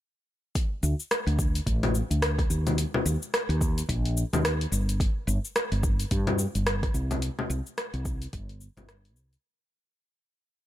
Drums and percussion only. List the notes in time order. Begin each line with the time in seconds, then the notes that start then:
0.55 kick, open hi-hat, cabasa
0.83 cabasa
1.00 cabasa
1.11 cross-stick, open hi-hat, cabasa
1.27 open hi-hat
1.39 kick, cabasa
1.55 open hi-hat, cabasa
1.67 kick, open hi-hat, cabasa
1.83 open hi-hat, low conga
1.95 cabasa
2.11 open hi-hat, cabasa
2.22 cross-stick, open hi-hat, cabasa
2.39 kick, cross-stick, open hi-hat
2.50 cabasa
2.67 open hi-hat, low conga, cabasa
2.78 open hi-hat, cabasa
2.94 cross-stick, low conga
3.06 cabasa
3.22 cabasa
3.34 cross-stick, open hi-hat, cabasa
3.50 open hi-hat
3.61 kick, cabasa
3.78 open hi-hat, cabasa
3.89 kick, open hi-hat, cabasa
4.05 open hi-hat
4.17 cabasa
4.33 open hi-hat, low conga, cabasa
4.45 cross-stick, open hi-hat, cabasa
4.61 open hi-hat
4.73 cabasa
4.89 open hi-hat, cabasa
5.00 kick, open hi-hat, cabasa
5.28 cabasa
5.45 cabasa
5.56 cross-stick, open hi-hat, cabasa
5.72 open hi-hat
5.83 kick, cabasa
6.00 open hi-hat, cabasa
6.11 kick, open hi-hat, cabasa
6.27 open hi-hat, low conga
6.39 cabasa
6.55 open hi-hat, cabasa
6.67 cross-stick, open hi-hat, cabasa
6.83 kick, cross-stick, open hi-hat
6.94 cabasa
7.11 open hi-hat, low conga, cabasa
7.22 open hi-hat, cabasa
7.39 cross-stick, low conga
7.50 cabasa
7.66 cabasa
7.78 cross-stick, open hi-hat, cabasa
7.94 open hi-hat
8.05 kick, cabasa
8.22 open hi-hat, cabasa
8.33 kick, open hi-hat, cabasa
8.49 open hi-hat
8.61 cabasa
8.77 open hi-hat, low conga, cabasa
8.89 cross-stick, open hi-hat, cabasa
9.05 open hi-hat
9.16 cabasa
9.33 open hi-hat, cabasa